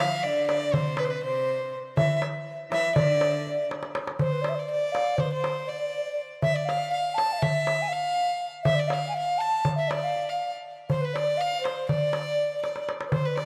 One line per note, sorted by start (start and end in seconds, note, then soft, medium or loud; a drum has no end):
0.00 0.26 F3 medium
0.00 0.24 F5 medium
0.00 0.28 F5 medium
0.00 darbuka tek medium
0.23 0.74 D3 medium
0.23 0.47 D5 medium
0.23 0.76 D5 medium
0.47 0.75 D5 medium
0.47 darbuka tek medium
0.73 1.21 C3 medium
0.73 1.00 C5 medium
0.73 darbuka dum medium
0.97 1.06 B4 medium
0.97 1.25 B4 medium
0.97 darbuka tek medium
1.04 1.11 C5 medium
1.10 1.23 B4 medium
1.22 1.74 C3 medium
1.22 1.79 C5 medium
1.22 1.75 C5 medium
1.22 darbuka ka soft
1.96 2.20 E3 medium
1.96 2.20 E5 medium
1.96 darbuka dum medium
2.22 darbuka tek medium
2.71 2.94 E3 medium
2.71 2.98 E5 medium
2.71 2.95 E5 medium
2.71 darbuka tek medium
2.95 3.67 D3 medium
2.95 3.66 D5 medium
2.95 3.70 D5 loud
2.95 darbuka dum medium
3.21 darbuka tek medium
3.47 darbuka ka soft
3.71 darbuka tek medium
3.83 darbuka ka medium
3.95 darbuka tek medium
4.07 darbuka ka medium
4.19 4.33 C5 medium
4.19 4.60 C5 medium
4.19 darbuka dum medium
4.32 4.43 B4 medium
4.41 4.50 D5 medium
4.41 darbuka tek medium
4.49 4.56 E5 medium
4.55 4.66 D5 medium
4.59 4.70 D5 medium
4.67 4.93 D5 medium
4.71 5.21 D5 medium
4.92 5.18 F5 medium
4.92 darbuka tek medium
5.16 5.26 C5 medium
5.16 5.33 C5 medium
5.16 darbuka dum medium
5.25 5.34 B4 medium
5.32 5.66 C5 medium
5.32 5.70 C5 medium
5.44 darbuka tek medium
5.66 5.71 D5 medium
5.66 6.25 D5 medium
5.66 darbuka ka soft
5.72 5.80 D5 medium
5.81 5.88 D5 medium
5.88 5.96 D5 medium
5.97 6.04 D5 medium
6.04 6.12 D5 soft
6.12 6.20 D5 medium
6.42 6.55 E5 medium
6.42 6.57 E5 medium
6.42 darbuka dum medium
6.54 6.66 D5 medium
6.54 6.71 D5 medium
6.65 6.89 F5 medium
6.69 6.93 F5 medium
6.69 darbuka tek medium
6.89 7.16 F5 medium
6.93 7.20 F5 medium
7.14 7.34 A5 medium
7.14 7.44 A5 medium
7.14 darbuka tek medium
7.32 7.40 F5 medium
7.39 7.83 E5 medium
7.39 7.94 E5 medium
7.39 darbuka dum medium
7.67 darbuka tek medium
7.82 7.90 G#5 medium
7.88 8.46 F5 medium
7.88 8.48 F5 medium
7.92 darbuka ka soft
8.63 8.77 E5 loud
8.63 8.81 E5 medium
8.63 darbuka dum medium
8.75 8.90 D5 medium
8.79 8.95 D5 medium
8.88 9.08 F5 medium
8.88 darbuka tek medium
8.93 9.17 F5 medium
9.08 9.16 G#5 medium
9.14 9.40 F5 medium
9.19 9.42 F5 medium
9.38 9.64 A5 medium
9.38 9.65 A5 medium
9.65 darbuka dum medium
9.75 9.89 E5 medium
9.75 9.92 E5 medium
9.88 10.02 D5 medium
9.88 10.30 D5 medium
9.88 darbuka tek medium
10.02 10.26 F5 medium
10.16 darbuka ka soft
10.29 10.53 F5 medium
10.29 10.51 F5 medium
10.89 11.02 C5 medium
10.89 11.06 C5 medium
10.89 darbuka dum medium
11.01 11.15 B4 medium
11.01 11.18 B4 medium
11.14 11.39 D5 medium
11.14 11.42 D5 medium
11.14 darbuka tek medium
11.37 11.60 F5 loud
11.37 11.66 F5 medium
11.60 11.90 C5 medium
11.60 11.89 C5 medium
11.65 darbuka tek medium
11.89 12.88 D5 medium
11.89 12.60 D5 medium
11.89 darbuka dum medium
12.13 darbuka tek medium
12.62 12.86 D5 medium
12.62 darbuka tek medium
12.76 darbuka ka medium
12.89 darbuka tek medium
13.01 darbuka ka medium
13.08 13.16 B4 soft
13.08 darbuka dum medium
13.13 13.27 C5 medium
13.13 13.29 C5 medium
13.25 13.37 B4 medium
13.25 13.41 B4 medium
13.36 13.45 D5 medium
13.36 darbuka tek medium